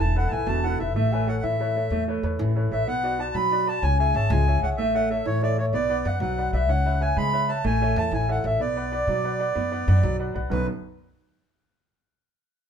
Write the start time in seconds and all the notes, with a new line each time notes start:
0.00 E1 E3 A5
0.16 E4 A4 B4 F#5
0.28 E4 G#5 A5
0.32 B1 A4 B4 G#5
0.47 E1 B2 A5
0.64 E4 A4 B4 F#5
0.79 E1 E4 A4 B4 E5
0.95 A1 A3 E5
1.12 A4 B4 C#5 G#5
1.27 A4 B4 C#5 F#5
1.42 A2 E3 E5
1.60 A4 B4 C#5
1.76 A4 B4 C#5
1.90 E2 A3
2.08 A4 B4 C#5
2.23 E2 A4 B4 C#5
2.39 A1 E3
2.56 A4 B4 C#5
2.71 A1 A4 B4 C#5 E5
2.86 B1 B3 F#5
3.03 F#4 B4 D5
3.19 F#4 B4 D5 A5
3.34 B2 F#3 B5
3.51 F#4 B4 D5
3.67 F#4 B4 D5 A5
3.82 C#2 C#4 G#5
3.99 G#4 C#5 E5 G#5
4.14 G#1 G#4 C#5 E5 A5
4.30 C#2 G#3 G#5
4.48 G#4 C#5 E5
4.62 C#2 G#4 C#5 E5 F#5
4.77 A1 A3 E5
4.95 A4 C#5 E5 F#5
5.10 A4 C#5 E5
5.25 A2 E3 C#5
5.43 A4 C#5 D5 E5
5.58 A4 C#5 E5
5.73 B1 B3 D5
5.90 B4 D5 F#5
6.05 F#2 B4 D5 F#5
6.20 B1 F#3 F#5
6.38 B4 D5 F#5
6.53 B1 B4 D5 E5 F#5
6.68 C#2 C#4 F#5
6.86 B4 C#5 E5
7.01 B4 C#5 E5 G#5
7.17 C#3 G#3 B5
7.33 B4 C#5 E5
7.49 B4 C#5 E5 A5
7.64 A1 A3 G#5
7.82 A4 C#5 E5
7.96 E2 A4 C#5 E5 A5
8.11 A1 E3 G#5
8.15 G#5
8.29 A4 C#5 E5 F#5
8.44 A1 A4 C#5 E5
8.59 B1 B3 D5
8.77 B4 D5 F#5
8.92 B4 D5 F#5
9.07 B2 F#3
9.25 B4 D5 F#5
9.40 B4 D5 F#5
9.55 F#2 B3
9.72 B4 D5 F#5
9.88 F#2 B4 D5 F#5
10.03 B1 F#3
10.19 B4 D5 F#5
10.34 B1 B4 D5 F#5
10.49 B1 F#2 D3 F#3 B3 F#4 B4